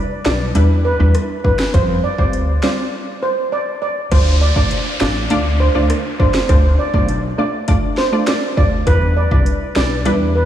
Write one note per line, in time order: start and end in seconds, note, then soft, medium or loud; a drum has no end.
0.00 0.22 G3 medium
0.00 0.22 D4 medium
0.00 0.22 E4 medium
0.00 0.22 B4 medium
0.25 0.50 B1 medium
0.25 0.53 G3 medium
0.25 0.53 D4 medium
0.25 0.53 E4 medium
0.25 0.53 B4 medium
0.25 0.35 D5 medium
0.25 finger snap medium
0.25 snare loud
0.55 0.92 E2 loud
0.55 0.96 G3 loud
0.55 0.96 D4 medium
0.55 0.96 E4 medium
0.55 0.96 B4 loud
0.55 closed hi-hat medium
0.85 0.94 B4 medium
1.00 1.12 E2 loud
1.00 1.20 G3 medium
1.00 1.20 D4 medium
1.00 1.20 E4 medium
1.00 1.20 B4 medium
1.15 cross-stick medium
1.15 closed hi-hat medium
1.44 1.64 G3 medium
1.44 1.64 D4 medium
1.44 1.65 E4 medium
1.44 1.54 B4 medium
1.44 1.65 B4 medium
1.44 kick loud
1.58 finger snap medium
1.58 snare loud
1.74 1.99 F2 loud
1.74 1.94 G3 loud
1.74 1.94 C4 medium
1.74 1.94 F4 medium
1.74 1.83 C5 loud
1.74 1.94 C5 loud
1.74 kick loud
1.74 closed hi-hat medium
2.04 2.13 D5 medium
2.18 2.55 D2 medium
2.18 2.59 G3 medium
2.18 2.60 C4 medium
2.18 2.60 F4 medium
2.18 2.60 C5 medium
2.18 2.28 D5 medium
2.18 kick medium
2.33 closed hi-hat medium
2.62 2.90 G3 medium
2.62 2.90 C4 medium
2.62 2.91 F4 medium
2.62 2.91 C5 medium
2.62 2.73 D5 medium
2.62 finger snap medium
2.62 snare loud
3.23 3.32 C5 medium
3.52 3.62 D5 medium
3.82 3.91 D5 medium
4.11 4.48 D2 loud
4.11 4.32 A3 loud
4.11 4.32 D4 medium
4.11 4.32 F4 medium
4.11 4.21 C5 loud
4.11 4.32 D5 loud
4.11 kick loud
4.11 closed hi-hat medium
4.11 crash loud
4.11 downlifter medium
4.41 4.51 D5 medium
4.56 4.68 B1 medium
4.56 4.97 A3 medium
4.56 4.97 D4 medium
4.56 4.97 F4 medium
4.56 4.66 D5 medium
4.56 4.97 D5 medium
4.56 kick medium
4.71 closed hi-hat medium
5.00 5.25 A1 medium
5.00 5.28 A3 medium
5.00 5.28 D4 medium
5.00 5.28 F4 medium
5.00 5.10 D5 medium
5.00 5.28 D5 medium
5.00 finger snap medium
5.00 snare loud
5.30 5.67 D2 medium
5.30 5.71 A3 loud
5.30 5.71 D4 medium
5.30 5.72 F4 medium
5.30 5.72 D5 loud
5.30 closed hi-hat medium
5.60 5.70 C5 medium
5.75 5.87 D2 medium
5.75 5.95 A3 medium
5.75 5.95 D4 medium
5.75 5.95 F4 medium
5.75 5.95 D5 medium
5.90 cross-stick loud
5.90 closed hi-hat medium
6.19 6.40 A3 medium
6.19 6.40 D4 medium
6.19 6.40 F4 medium
6.19 6.29 C5 medium
6.19 6.40 D5 medium
6.19 kick loud
6.34 finger snap medium
6.34 snare loud
6.49 6.74 D2 loud
6.49 6.69 A3 loud
6.49 6.69 D4 medium
6.49 6.69 F4 medium
6.49 6.59 C5 loud
6.49 6.70 D5 loud
6.49 kick loud
6.49 closed hi-hat medium
6.79 6.88 D5 medium
6.94 7.31 B1 medium
6.94 7.35 A3 medium
6.94 7.35 D4 medium
6.94 7.35 F4 medium
6.94 7.03 D5 medium
6.94 7.35 D5 medium
6.94 kick medium
7.09 closed hi-hat medium
7.38 7.66 A3 medium
7.38 7.66 D4 medium
7.38 7.66 F4 medium
7.38 7.48 D5 medium
7.38 7.66 D5 medium
7.68 8.09 A3 loud
7.68 8.09 D4 medium
7.68 8.09 F4 medium
7.68 8.09 D5 loud
7.68 kick loud
7.68 closed hi-hat medium
7.98 8.07 C5 medium
7.98 snare medium
8.12 8.33 A3 medium
8.12 8.33 D4 medium
8.12 8.33 F4 medium
8.12 8.33 D5 medium
8.27 8.37 D5 medium
8.27 finger snap loud
8.27 cross-stick loud
8.27 snare loud
8.27 closed hi-hat medium
8.57 8.82 D2 medium
8.57 8.77 A3 medium
8.57 8.77 D4 medium
8.57 8.77 F4 medium
8.57 8.67 D5 medium
8.57 8.77 D5 medium
8.57 kick loud
8.87 9.24 E2 loud
8.87 9.07 G3 loud
8.87 9.07 D4 medium
8.87 9.07 E4 medium
8.87 8.96 B4 loud
8.87 9.07 B4 loud
8.87 kick loud
8.87 closed hi-hat medium
9.17 9.26 D5 medium
9.31 9.44 C2 medium
9.31 9.72 G3 medium
9.31 9.72 D4 medium
9.31 9.72 E4 medium
9.31 9.73 B4 medium
9.31 9.41 D5 medium
9.31 kick medium
9.46 closed hi-hat medium
9.75 10.01 B1 loud
9.75 10.03 G3 medium
9.75 10.03 D4 medium
9.75 10.03 E4 medium
9.75 10.03 B4 medium
9.75 9.85 D5 medium
9.75 finger snap medium
9.75 snare loud
10.05 10.43 E2 loud
10.05 10.45 G3 loud
10.05 10.45 D4 medium
10.05 10.45 E4 medium
10.05 10.45 B4 loud
10.05 closed hi-hat medium
10.35 10.45 B4 medium